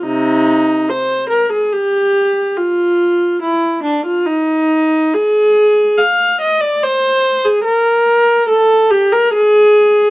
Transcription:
X:1
M:3/4
L:1/16
Q:1/4=72
K:Cm
V:1 name="Viola"
[C,E]4 c2 B A G4 | F4 =E2 D F _E4 | A4 f2 e d c3 A | B4 =A2 G B _A4 |]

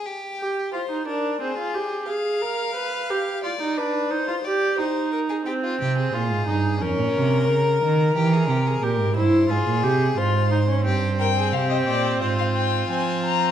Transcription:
X:1
M:4/4
L:1/16
Q:1/4=89
K:Cphr
V:1 name="Violin"
z16 | z16 | z16 | z16 |
z2 g2 f e =d2 c f g2 a2 b2 |]
V:2 name="Violin"
G4 c2 B2 A4 f4- | f4 =d2 =B2 c2 d2 c2 _B A | G F G A4- A B8 | G A G A B2 c2 A4 c4 |
G2 B A G4 F8 |]
V:3 name="Viola"
z2 G2 F E =D2 C F G2 A2 B2 | =B2 G2 F E =D2 E F G2 E4 | C4 F2 E2 D4 B4- | B4 G2 =E2 F2 G2 F2 _E D |
C12 C4 |]
V:4 name="Cello" clef=bass
z16 | z16 | z2 C,2 B,, A,, G,,2 F,, B,, C,2 D,2 E,2 | =E,2 C,2 B,, A,, G,,2 A,, B,, C,2 A,,4 |
G,,4 C,2 B,,2 A,,4 F,4 |]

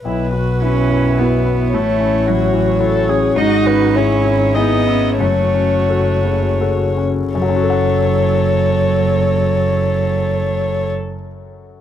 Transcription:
X:1
M:3/4
L:1/8
Q:1/4=90
K:F#dor
V:1 name="Violin"
B6 | c6 | d B c2 d2 | c4- c z |
c6- | c6 |]
V:2 name="Viola"
E F E4 | E2 F2 A G | F2 E2 D E | F4- F z |
A6- | A6 |]
V:3 name="Grand piano"
B,,, B, [EF] F,, [EF] B, | A,, C [EF] E, [EF] C | G,, C [EG] D, [EG] C | F,, C [FA] C, [FA] C |
[F,,F,CFAf]6- | [F,,F,CFAf]6 |]
V:4 name="Cello"
z2 C2 B,2 | A,2 F,3 z | D2 C2 B,2 | A,4 z2 |
F,6- | F,6 |]
V:5 name="Double bass" clef=bass
B,,,6 | A,,,6 | G,,,6 | F,,,6 |
F,,,6- | F,,,6 |]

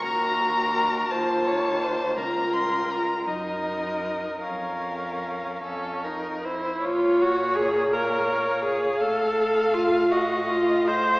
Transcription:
X:1
M:6/8
L:1/8
Q:3/8=54
K:Bbm
V:1 name="Violin"
b3 =a3 | b c' b e3 | f4- f z | d3 f3- |
f6 |]
V:2 name="Violin"
B3 c d c | B3 B3 | B3 =A B c | d3 d3 |
f3 e3 |]
V:3 name="Viola"
G3 F3 | F3 E3 | D3 D E =E | F G A B2 A |
=A2 F G F c |]
V:4 name="Cello" clef=bass
E,,3 E,,3 | D,,3 G,,3 | F,,3 F,,2 z | B,,6 |
=A,,6 |]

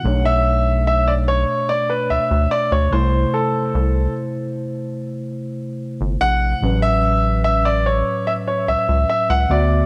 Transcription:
X:1
M:4/4
L:1/16
Q:1/4=73
K:Bdor
V:1 name="Grand piano"
f e3 e d c2 d B e2 d c =c2 | A4 z8 z2 f2- | f e3 e d c2 e c e2 e f d2 |]
V:2 name="Tine electric piano"
[B,,A,Dc]12- [B,,A,Dc]2 [=C,A,E=c]2- | [=C,A,E=c]12- [C,A,Ec]2 z2 | [A,,F,CB]12- [A,,F,CB]2 [D,B,Fe]2 |]
V:3 name="Analog synth bass" clef=bass
B,,,6- B,,, z3 D,, D,, z D,, =C,,2 | z2 =C,,2 z8 z =G,,, _B,,,2 | A,,,6- A,,, z3 C,, C,, z C,, D,,2 |]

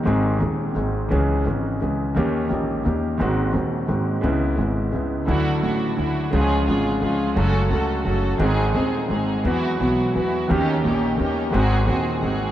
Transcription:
X:1
M:3/4
L:1/8
Q:1/4=173
K:C#m
V:1 name="String section"
z6 | z6 | z6 | z6 |
z6 | [=DEF]2 [DEF]2 [DEF]2 | [C^EG]2 [CEG]2 [CEG]2 | [CFA]2 [CFA]2 [CFA]2 |
[^B,DG]2 [B,DG]2 [B,DG]2 | [B,EF]2 [B,EF]2 [B,EF]2 | [CD=G]2 [CDG]2 [CDG]2 | [^B,FG]2 [B,FG]2 [B,FG]2 |]
V:2 name="Grand piano" clef=bass
[G,,,G,,D,G,^B,G]2 [D,,,D,,D,G,B,G]2 [G,,,G,,D,G,B,G]2 | [C,,C,E,G,CG]2 [G,,,G,,E,G,CG]2 [C,,C,E,G,CG]2 | [D,,D,^A,C=G]2 [^A,,,^A,,D,A,CG]2 [D,,D,A,CG]2 | [G,,,G,,D,G,^B,F]2 [D,,,D,,D,G,B,F]2 [G,,,G,,D,G,B,F]2 |
[C,,C,G,B,E]2 [G,,,G,,C,G,B,E]2 [C,,C,G,B,E]2 | [=D,,=D,F,A,E]2 [A,,,A,,D,F,A,E]2 [D,,D,F,A,E]2 | [C,,C,^E,G,^E]2 [G,,,G,,C,E,G,E]2 [C,,C,E,G,E]2 | [F,,C,F,A,F]2 [C,,C,F,A,F]2 [F,,C,F,A,F]2 |
[G,,,G,,D,G,^B,G]2 [D,,,D,,D,G,B,G]2 [G,,,G,,D,G,B,G]2 | [E,,E,F,B,F]2 [B,,,B,,E,F,B,F]2 [E,,E,F,B,F]2 | [D,,D,^A,C=G]2 [^A,,,^A,,D,A,CG]2 [D,,D,A,CG]2 | [G,,,G,,D,G,^B,F]2 [D,,,D,,D,G,B,F]2 [G,,,G,,D,G,B,F]2 |]
V:3 name="Upright bass" clef=bass
G,,,2 D,,2 G,,,2 | C,,2 G,,,2 C,,2 | D,,2 ^A,,,2 D,,2 | G,,,2 D,,2 G,,,2 |
C,,2 G,,,2 C,,2 | =D,,2 A,,,2 D,,2 | C,,2 G,,,2 C,,2 | F,,,2 C,,2 F,,,2 |
G,,,2 D,,2 G,,,2 | E,,2 B,,,2 E,,2 | D,,2 ^A,,,2 D,,2 | G,,,2 D,,2 G,,,2 |]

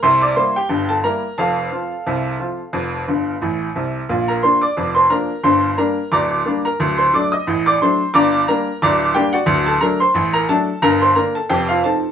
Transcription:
X:1
M:2/4
L:1/16
Q:"Swing 16ths" 1/4=89
K:Gm
V:1 name="Upright piano"
[cc'] [dd'] [cc'] [Gg]2 [Aa] [Bb]2 | [Afa]8- | [Afa]4 z4 | z [Bb] [cc'] [dd']2 [cc'] [Bb]2 |
[cc']2 [Bb]2 [dbd']3 [Bb] | z [cc'] [dd'] [ee']2 [dd'] [cc']2 | [dbd']2 [Bb]2 [dbd']2 [Gg] [_Gd_g]- | [_Gd_g] [Aa] [Bb] [cc']2 [Bb] [Aa]2 |
[Bb] [cc'] [Bb] [Aa] [Gg] [Ff] [Aa]2 |]
V:2 name="Upright piano" clef=bass
[C,,C,]2 [G,B,=E]2 [G,,,G,,]2 [G,B,E]2 | [F,,,F,,]2 [F,CF]2 [C,,C,]2 [F,CF]2 | [F,,,F,,]2 [G,,,G,,]2 [A,,,A,,]2 [C,,C,]2 | [B,,,B,,]2 [F,B,D]2 [F,,,F,,]2 [F,B,D]2 |
[G,,,G,,]2 [G,B,D]2 [D,,,D,,]2 [G,B,D]2 | [D,,,D,,]2 [^F,A,D]2 [A,,,A,,]2 [F,A,D]2 | [G,,,G,,]2 [G,B,D]2 [D,,,D,,]2 [G,B,D]2 | [D,,,D,,]2 [^F,A,D]2 [A,,,A,,]2 [F,A,D]2 |
[G,,,G,,]2 [D,B,D]2 [F,,,F,,]2 [F,CE]2 |]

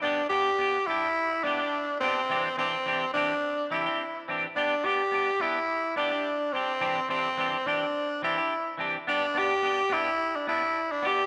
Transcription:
X:1
M:4/4
L:1/16
Q:"Swing 16ths" 1/4=106
K:G
V:1 name="Clean electric guitar"
[B,DG] z [B,DG] z [B,G] z [DG] z3 [B,DG] [DG] z2 [B,DG] z | [E,CDG] z [E,CDG] z [E,CDG] z [E,CDG] z3 [E,CDG] [CDG] z2 [E,CDG] z | [B,DG] z [B,DG] z [B,DG] z [B,DG] z3 [B,DG] [DG] z2 [DG] z | [E,CDG] z [E,CDG] z [E,CDG] z [E,CDG] z3 [E,CDG] [DG] z2 [E,CDG] z |
[B,DG] z [B,DG] z [B,DG] z [B,DG] z3 [B,D] D z2 [B,DG] z |]
V:2 name="Tenor saxophone"
D2 G4 E4 D4 C2- | C2 C4 D4 E4 z2 | D2 G4 E4 D4 C2- | C2 C4 D4 E4 z2 |
D2 G4 E3 D E3 D G2 |]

